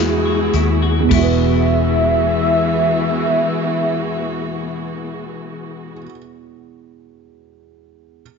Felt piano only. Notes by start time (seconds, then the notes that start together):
Already playing: F#3 E4 F#4
0.00 G#4
1.00 E2
1.05 B2
1.09 G#3
1.14 E4
1.18 F#4
1.23 B4